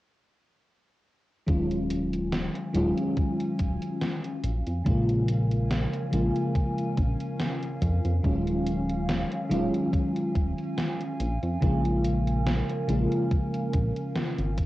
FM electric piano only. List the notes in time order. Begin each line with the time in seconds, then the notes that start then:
1.47 D#3 F#3 G#3 C#4 F4
2.73 D#3 F#3 G#3 C#4 F4
4.84 C#3 F3 G#3 A#3 F4
6.11 C#3 F3 G#3 A#3 F4
8.23 D#3 F#3 G#3 C#4 F4
9.50 D#3 F#3 G#3 C#4 F4
11.61 C#3 F3 G#3 A#3 F4
12.87 C#3 F3 G#3 A#3 F4